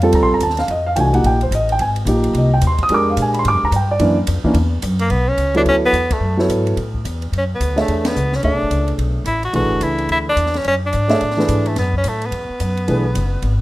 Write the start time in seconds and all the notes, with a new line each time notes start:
Already playing: F2
0.02 G3 C4 F4 A4 A5, ride
0.12 D2 A#5, ride
0.22 A#1 C6
0.31 G1 A#5
0.40 D#2 A5, hi-hat pedal, ride
0.50 snare
0.57 F5, snare, ride
0.68 F2 D#5, ride
0.86 F5
0.96 C2 E3 A3 D4 F#4 G5, hi-hat pedal, ride
1.00 G#5
1.13 F3 A#3 D#4 G4 F#5, ride
1.24 A#1 G5, ride
1.41 C5, ride
1.51 A1 D#5, hi-hat pedal, ride
1.69 G5, ride
1.79 G#1 G#5, ride
1.96 ride
2.05 A#1 F3 A#3 D#4 G4, hi-hat pedal, ride
2.24 ride
2.33 C2, ride
2.38 D#5
2.54 G5
2.61 D#2, hi-hat pedal, ride
2.67 C6
2.78 kick, ride
2.83 D#6
2.89 F2 G#3 D4 G4 A#4, ride
2.94 D6
3.10 F5
3.17 A#2, hi-hat pedal, ride
3.22 G#5
3.34 ride
3.39 C6
3.45 G#2 D6, ride
3.53 F2
3.63 D#2 A#5
3.71 G2, hi-hat pedal, ride
3.76 G5
3.91 D5
3.99 F#2 E3 A#3 C#4 D4, ride
4.27 F2, hi-hat pedal, ride
4.44 E3 A#3 C#4 D4, muted upright bass stroke, kick
4.54 E2, ride
4.82 F#2, hi-hat pedal, ride
4.99 A#3, ride
5.10 B1 B3, ride
5.28 C#4
5.37 C#2, hi-hat pedal, ride
5.54 F#3 B3 D4 E4 A4 C#5, ride
5.65 D2 C#4, ride
5.86 B3
5.92 E2, hi-hat pedal, ride
6.11 A3, kick, ride
6.20 F#2
6.37 F#3 B3 E4 A4 C#5, snare
6.49 G#2, hi-hat pedal, ride
6.67 ride
6.77 A2, ride
6.94 kick
7.04 E2, hi-hat pedal, ride
7.22 ride
7.32 F#2, ride
7.38 C#4
7.55 B3
7.60 D2, hi-hat pedal, ride
7.76 A3 D4 G#4 C#5 E5, snare, ride
7.81 A3
7.88 E2, ride
7.99 A3
8.05 B3, snare, ride
8.16 C#2, hi-hat pedal
8.33 C#4, snare
8.43 D2 A3 D4 G#4 C#5 E5, ride
8.53 B1
8.62 A1
8.70 C#2, hi-hat pedal, ride
8.88 ride
8.98 B1, ride
9.24 A1 E4, hi-hat pedal, ride
9.43 F#4, ride
9.53 B1 E3 A3 D4 F#4 G#4 B4, ride
9.62 A1
9.72 F#1
9.81 C#2 E4, hi-hat pedal, ride
9.98 ride
10.09 D2 E4, ride
10.29 D4
10.36 E2, hi-hat pedal, ride
10.46 snare
10.54 C#4, snare, ride
10.64 F#2 C#4, ride
10.86 D4
10.93 G#2, hi-hat pedal, ride
11.08 A3 D4 G#4 C#5 E5, snare, ride
11.21 A2, ride
11.31 snare
11.37 E3 A3 D4 G#4 B4, snare
11.48 G#2, hi-hat pedal, ride
11.66 A3, ride
11.76 F#2 B3, snare, ride
11.93 kick
11.98 C#4
12.04 A2, hi-hat pedal, ride
12.08 A3
12.22 ride
12.26 B3
12.31 E2, ride
12.49 muted upright bass stroke
12.60 F#2, hi-hat pedal, ride
12.77 ride
12.88 B1 E3 A3 D4 G#4 B4, ride
13.15 F#1, hi-hat pedal, ride
13.42 G#1, ride